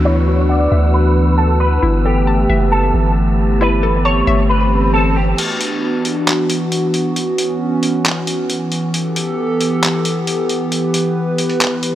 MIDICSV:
0, 0, Header, 1, 9, 480
1, 0, Start_track
1, 0, Key_signature, 2, "major"
1, 0, Tempo, 444444
1, 55, Time_signature, 4, 2, 24, 8
1, 12906, End_track
2, 0, Start_track
2, 0, Title_t, "Synth texture"
2, 0, Program_c, 0, 99
2, 0, Note_on_c, 0, 71, 81
2, 0, Note_on_c, 0, 78, 70
2, 0, Note_on_c, 0, 88, 86
2, 1936, Note_off_c, 0, 78, 0
2, 1973, Note_on_c, 0, 81, 68
2, 5772, Note_off_c, 0, 71, 0
2, 5772, Note_off_c, 0, 88, 0
2, 5776, Note_off_c, 0, 81, 0
2, 12906, End_track
3, 0, Start_track
3, 0, Title_t, "Synth pluck"
3, 0, Program_c, 1, 84
3, 0, Note_on_c, 1, 76, 79
3, 54, Note_on_c, 1, 64, 88
3, 292, Note_off_c, 1, 76, 0
3, 298, Note_on_c, 1, 66, 83
3, 531, Note_on_c, 1, 78, 95
3, 774, Note_on_c, 1, 76, 82
3, 1494, Note_off_c, 1, 64, 0
3, 1737, Note_off_c, 1, 66, 0
3, 1971, Note_on_c, 1, 64, 93
3, 1973, Note_off_c, 1, 78, 0
3, 1975, Note_off_c, 1, 76, 0
3, 2220, Note_on_c, 1, 69, 78
3, 2455, Note_on_c, 1, 81, 92
3, 2695, Note_on_c, 1, 76, 92
3, 3413, Note_off_c, 1, 64, 0
3, 3658, Note_off_c, 1, 69, 0
3, 3895, Note_off_c, 1, 81, 0
3, 3898, Note_on_c, 1, 64, 87
3, 4135, Note_off_c, 1, 76, 0
3, 4137, Note_on_c, 1, 69, 75
3, 4376, Note_on_c, 1, 81, 92
3, 4615, Note_on_c, 1, 76, 86
3, 5337, Note_off_c, 1, 64, 0
3, 5576, Note_off_c, 1, 69, 0
3, 5815, Note_off_c, 1, 76, 0
3, 5815, Note_off_c, 1, 81, 0
3, 12906, End_track
4, 0, Start_track
4, 0, Title_t, "Clean electric guitar"
4, 0, Program_c, 2, 27
4, 52, Note_on_c, 2, 73, 95
4, 505, Note_off_c, 2, 73, 0
4, 535, Note_on_c, 2, 74, 73
4, 986, Note_off_c, 2, 74, 0
4, 1013, Note_on_c, 2, 71, 80
4, 1465, Note_off_c, 2, 71, 0
4, 1486, Note_on_c, 2, 69, 79
4, 1718, Note_off_c, 2, 69, 0
4, 1729, Note_on_c, 2, 71, 83
4, 1960, Note_off_c, 2, 71, 0
4, 2217, Note_on_c, 2, 67, 75
4, 2893, Note_off_c, 2, 67, 0
4, 2934, Note_on_c, 2, 69, 81
4, 3386, Note_off_c, 2, 69, 0
4, 3907, Note_on_c, 2, 71, 98
4, 4352, Note_off_c, 2, 71, 0
4, 4375, Note_on_c, 2, 73, 85
4, 4826, Note_off_c, 2, 73, 0
4, 4853, Note_on_c, 2, 71, 71
4, 5305, Note_off_c, 2, 71, 0
4, 5330, Note_on_c, 2, 69, 93
4, 5561, Note_off_c, 2, 69, 0
4, 5576, Note_on_c, 2, 67, 66
4, 5803, Note_off_c, 2, 67, 0
4, 12906, End_track
5, 0, Start_track
5, 0, Title_t, "Analog synth pad"
5, 0, Program_c, 3, 89
5, 0, Note_on_c, 3, 52, 76
5, 0, Note_on_c, 3, 59, 74
5, 0, Note_on_c, 3, 62, 75
5, 0, Note_on_c, 3, 66, 90
5, 1937, Note_off_c, 3, 62, 0
5, 1937, Note_off_c, 3, 66, 0
5, 1973, Note_on_c, 3, 67, 90
5, 1974, Note_on_c, 3, 57, 72
5, 5772, Note_off_c, 3, 52, 0
5, 5772, Note_off_c, 3, 59, 0
5, 5776, Note_off_c, 3, 57, 0
5, 5776, Note_off_c, 3, 67, 0
5, 5815, Note_on_c, 3, 66, 90
5, 5816, Note_on_c, 3, 52, 82
5, 5817, Note_on_c, 3, 59, 76
5, 5817, Note_on_c, 3, 62, 77
5, 7717, Note_off_c, 3, 62, 0
5, 7733, Note_on_c, 3, 61, 75
5, 9617, Note_off_c, 3, 66, 0
5, 9618, Note_off_c, 3, 59, 0
5, 9635, Note_off_c, 3, 61, 0
5, 9655, Note_on_c, 3, 67, 74
5, 9656, Note_on_c, 3, 59, 75
5, 9656, Note_on_c, 3, 69, 93
5, 11556, Note_off_c, 3, 69, 0
5, 11576, Note_on_c, 3, 71, 92
5, 12906, Note_off_c, 3, 52, 0
5, 12906, Note_off_c, 3, 59, 0
5, 12906, Note_off_c, 3, 67, 0
5, 12906, Note_off_c, 3, 71, 0
5, 12906, End_track
6, 0, Start_track
6, 0, Title_t, "808-style bass"
6, 0, Program_c, 4, 38
6, 0, Note_on_c, 4, 38, 99
6, 732, Note_off_c, 4, 38, 0
6, 775, Note_on_c, 4, 38, 101
6, 1932, Note_off_c, 4, 38, 0
6, 1975, Note_on_c, 4, 31, 104
6, 2666, Note_off_c, 4, 31, 0
6, 2694, Note_on_c, 4, 30, 103
6, 3155, Note_off_c, 4, 30, 0
6, 3174, Note_on_c, 4, 31, 102
6, 4572, Note_off_c, 4, 31, 0
6, 4615, Note_on_c, 4, 31, 105
6, 5772, Note_off_c, 4, 31, 0
6, 12906, End_track
7, 0, Start_track
7, 0, Title_t, "Downlifter"
7, 0, Program_c, 5, 103
7, 0, Note_on_c, 5, 60, 82
7, 1975, Note_off_c, 5, 60, 0
7, 12906, End_track
8, 0, Start_track
8, 0, Title_t, "Swell"
8, 0, Program_c, 6, 103
8, 1975, Note_on_c, 6, 60, 79
8, 5815, Note_off_c, 6, 60, 0
8, 12906, End_track
9, 0, Start_track
9, 0, Title_t, "Drums"
9, 5815, Note_on_c, 9, 42, 73
9, 5815, Note_on_c, 9, 49, 91
9, 5923, Note_off_c, 9, 42, 0
9, 5923, Note_off_c, 9, 49, 0
9, 6055, Note_on_c, 9, 42, 86
9, 6163, Note_off_c, 9, 42, 0
9, 6534, Note_on_c, 9, 42, 61
9, 6642, Note_off_c, 9, 42, 0
9, 6777, Note_on_c, 9, 42, 68
9, 6783, Note_on_c, 9, 39, 105
9, 6885, Note_off_c, 9, 42, 0
9, 6891, Note_off_c, 9, 39, 0
9, 7016, Note_on_c, 9, 42, 77
9, 7124, Note_off_c, 9, 42, 0
9, 7256, Note_on_c, 9, 42, 66
9, 7364, Note_off_c, 9, 42, 0
9, 7494, Note_on_c, 9, 42, 56
9, 7602, Note_off_c, 9, 42, 0
9, 7736, Note_on_c, 9, 42, 69
9, 7844, Note_off_c, 9, 42, 0
9, 7975, Note_on_c, 9, 42, 86
9, 8083, Note_off_c, 9, 42, 0
9, 8454, Note_on_c, 9, 42, 62
9, 8562, Note_off_c, 9, 42, 0
9, 8697, Note_on_c, 9, 42, 69
9, 8703, Note_on_c, 9, 39, 104
9, 8805, Note_off_c, 9, 42, 0
9, 8811, Note_off_c, 9, 39, 0
9, 8935, Note_on_c, 9, 42, 76
9, 9043, Note_off_c, 9, 42, 0
9, 9176, Note_on_c, 9, 42, 69
9, 9284, Note_off_c, 9, 42, 0
9, 9414, Note_on_c, 9, 42, 55
9, 9522, Note_off_c, 9, 42, 0
9, 9655, Note_on_c, 9, 42, 73
9, 9763, Note_off_c, 9, 42, 0
9, 9895, Note_on_c, 9, 42, 86
9, 10003, Note_off_c, 9, 42, 0
9, 10374, Note_on_c, 9, 42, 63
9, 10482, Note_off_c, 9, 42, 0
9, 10616, Note_on_c, 9, 42, 73
9, 10623, Note_on_c, 9, 39, 102
9, 10724, Note_off_c, 9, 42, 0
9, 10731, Note_off_c, 9, 39, 0
9, 10855, Note_on_c, 9, 42, 78
9, 10963, Note_off_c, 9, 42, 0
9, 11095, Note_on_c, 9, 42, 71
9, 11203, Note_off_c, 9, 42, 0
9, 11334, Note_on_c, 9, 42, 56
9, 11442, Note_off_c, 9, 42, 0
9, 11576, Note_on_c, 9, 42, 70
9, 11684, Note_off_c, 9, 42, 0
9, 11815, Note_on_c, 9, 42, 90
9, 11923, Note_off_c, 9, 42, 0
9, 12295, Note_on_c, 9, 42, 63
9, 12403, Note_off_c, 9, 42, 0
9, 12415, Note_on_c, 9, 42, 37
9, 12523, Note_off_c, 9, 42, 0
9, 12536, Note_on_c, 9, 42, 68
9, 12542, Note_on_c, 9, 39, 104
9, 12644, Note_off_c, 9, 42, 0
9, 12650, Note_off_c, 9, 39, 0
9, 12774, Note_on_c, 9, 42, 74
9, 12882, Note_off_c, 9, 42, 0
9, 12906, End_track
0, 0, End_of_file